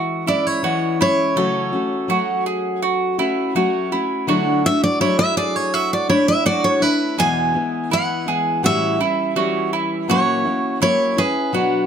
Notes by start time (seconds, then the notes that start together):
Already playing: E3 G#3 C#4 E4 F#4 E5
0.26 G#3 C#4 E4 D5
0.47 C#5
0.63 E3 G#3 C#4 E4 F#4
0.99 G#3 C#4 E4 C#5
1.36 C#3 F#3 A3 C#4 F#4 A4
1.73 A3 C#4 F#4
2.08 F#3 A3 C#4 F#4
2.46 G#4
2.82 F#4
3.18 A3 C#4 E4 F#4
3.55 F#3 A3 C#4 F#4
3.92 A3 C#4 E4 F#4
4.27 D3 F#3 A3 D4 E4 F#4
4.64 A3 D4 E4 E5
4.84 D5
5.00 F#3 A3 D4 E4 C#5
5.19 E5
5.37 G#4 D5
5.56 C#5
5.74 F#4 E5
5.93 D5
6.09 A3 D4 E4 C#5
6.28 E5
6.45 F#3 A3 D4 E4 F#4 D5
6.64 C#5
6.80 A3 D4 E4 B4
7.18 E2 B2 E3 G#3 B3 E4 G#4 G#5
7.54 E3 G#3 B3 E4
7.90 E3 G#3 B3 E4 F#5
8.26 E3 G#3 B3 E4 G#4
8.63 A2 E3 G3 C#4 E4 F#4 E5
8.99 G3 C#4 E4
9.35 E3 G3 C#4 E4 F#4
9.73 E4
10.08 A#2 F#3 A#3 C#4 E4 F#4 C#5
10.44 A#3 C#4 E4
10.80 F#3 A#3 C#4 E4 C#5
11.17 C#4 E4 G#4 B4
11.53 B2 F#3 B3 D4 F#4